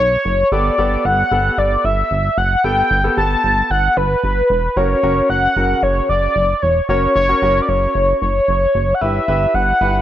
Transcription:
Already playing: analog synth lead C#5
0.00 analog synth bass B1
0.25 analog synth bass F#1
0.52 analog synth bass G1, grand piano B3 G4 A4, analog synth lead D5
0.78 analog synth bass G1, grand piano B3 G4 A4
1.05 analog synth bass G1, analog synth lead F#5
1.31 analog synth bass G1, grand piano B3 G4 A4
1.58 analog synth bass G1, analog synth lead D5
1.85 analog synth bass G1, analog synth lead E5
2.11 analog synth bass G1
2.38 analog synth bass F#1, analog synth lead F#5
2.64 analog synth bass G1, grand piano B3 G4 A4, analog synth lead G5
2.91 analog synth bass G1
3.04 grand piano B3 G4 A4
3.17 analog synth bass G1, grand piano B3 G4 A4, analog synth lead A5
3.44 analog synth bass G1
3.70 analog synth bass G1, analog synth lead F#5
3.97 analog synth bass G1, analog synth lead B4
4.24 analog synth bass G1
4.50 analog synth bass E1
4.76 analog synth bass F#1, grand piano C#4 F#4 A#4, analog synth lead C#5
5.03 analog synth bass F#1, grand piano C#4 F#4 A#4
5.30 analog synth bass F#1, analog synth lead F#5
5.56 analog synth bass F#1, grand piano C#3 F#4 A#4
5.83 analog synth bass F#1, analog synth lead C#5
6.09 analog synth bass F#1, analog synth lead D5
6.36 analog synth bass F#1
6.62 analog synth bass E1, analog synth lead C#5
6.89 analog synth bass F#1, grand piano C#4 F#4 A#4, analog synth lead C#5
7.16 analog synth bass F#1, analog synth lead C#5
7.29 grand piano C#4 F#4 A#4
7.42 analog synth bass F#1, grand piano C#4 F#4 A#4
7.62 analog synth lead D5
7.69 analog synth bass F#1, analog synth lead C#5
7.95 analog synth bass F#1
8.22 analog synth bass F#1, analog synth lead C#5
8.48 analog synth bass F#1
8.75 analog synth bass F#1
8.94 analog synth lead F#5
9.01 analog synth bass G1, grand piano E4 G4 B4, analog synth lead E5
9.28 analog synth bass G1, grand piano E4 G4 B4
9.54 analog synth bass G1, analog synth lead F#5
9.81 analog synth bass G1, grand piano E4 G4 B4

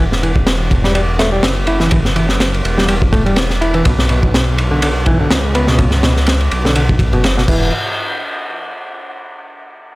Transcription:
0.00 detuned saw bass E1
0.12 snare
0.23 picked electric bass E3, ride
0.36 kick
0.47 snare, ride
0.71 kick, ride
0.84 picked electric bass G3, snare
0.95 picked electric bass G3, ride
1.19 picked electric bass A3, snare, ride
1.32 picked electric bass G3
1.43 detuned saw bass F#1, snare, ride
1.67 picked electric bass E4, ride
1.80 picked electric bass E3, snare
1.91 picked electric bass E3, kick, ride
2.05 snare
2.16 picked electric bass E3, ride
2.29 snare
2.40 snare, ride
2.54 ride
2.65 detuned saw bass E1, ride
2.78 picked electric bass G3, snare
2.88 picked electric bass G3, ride
3.02 kick
3.13 picked electric bass A3, kick, ride
3.26 picked electric bass G3, ride
3.36 snare, ride
3.50 snare
3.61 picked electric bass E4, ride
3.74 picked electric bass E3, ride
3.85 detuned saw bass B1, picked electric bass B2, kick, ride
3.99 snare
4.09 picked electric bass B2, ride
4.23 kick
4.34 snare, ride
4.58 ride
4.71 picked electric bass D3
4.82 picked electric bass D3, ride
5.06 picked electric bass E3, kick, ride
5.20 picked electric bass D3
5.31 detuned saw bass C#2, snare, ride
5.55 picked electric bass B3, ride
5.67 picked electric bass B2, snare
5.79 picked electric bass B2, kick, ride
5.91 snare
6.03 picked electric bass B2, snare, ride
6.17 snare
6.26 snare, ride
6.41 ride
6.51 detuned saw bass B1, ride
6.65 picked electric bass D3, snare
6.75 picked electric bass D3, ride
6.89 kick
6.99 kick, ride
7.13 detuned saw bass F#1, picked electric bass B2, ride
7.24 snare, ride
7.38 picked electric bass B2, snare
7.48 detuned saw bass E1, picked electric bass E3, kick, crash

